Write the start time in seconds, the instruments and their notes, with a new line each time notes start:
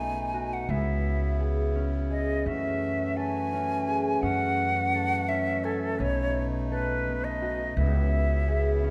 Already playing: upright bass B1, harmonium B2 A3 D#4, harp C#4 A4, flute G#5
0.00 harp B3
0.34 harp F#4
0.53 flute F#5
0.69 upright bass C#2, harmonium C#3 B3 E4, harp B3, flute E5
1.40 harp G#4
1.76 harp C#4
2.10 harp G#4, flute D#5
2.46 upright bass F#2, harmonium E3 A3 F#4, harp C#4, flute E5
3.17 harp A4, flute G#5
3.53 harp C#4
3.88 harp G#4
4.22 upright bass F#2, harp C#4, flute F#5
4.94 harp A4
5.29 harp C#4, flute E5
5.64 flute A4, harp G#5
5.99 upright bass B1, harmonium B2 D#4, harp B3, flute C#5
6.70 harp A4, flute B4
7.07 harp B3
7.24 flute D#5
7.42 harp F#4
7.76 upright bass C#2, harmonium C#3 B3 E4, harp B3, flute E5
8.48 harp G#4
8.84 harp C#4